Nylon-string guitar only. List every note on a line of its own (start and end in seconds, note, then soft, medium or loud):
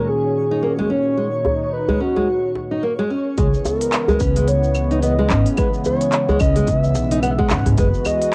0.51 0.62 D#4 medium
0.63 0.72 A#3 medium
0.79 0.89 G#3 medium
0.90 1.16 C#4 medium
1.17 1.27 G#3 medium
1.89 1.99 G#3 medium
2.00 2.15 C#4 medium
2.16 2.27 G#3 medium
2.71 2.82 D#4 medium
2.83 2.92 A#3 medium
2.99 3.09 G#3 medium
3.10 3.37 C#4 medium
3.38 3.47 G#3 medium
4.09 4.19 G#3 loud
4.20 4.35 C#4 medium
4.36 4.47 G#3 medium
4.91 5.02 D#4 medium
5.03 5.12 B3 medium
5.19 5.29 G#3 loud
5.30 5.57 C#4 medium
5.58 5.67 G#3 medium
6.29 6.39 G#3 loud
6.40 6.55 C#4 medium
6.57 6.68 G#3 medium
7.12 7.22 D#4 medium
7.23 7.32 B3 medium
7.38 7.49 G#3 loud
7.50 7.77 C#4 medium
7.78 7.87 G#3 medium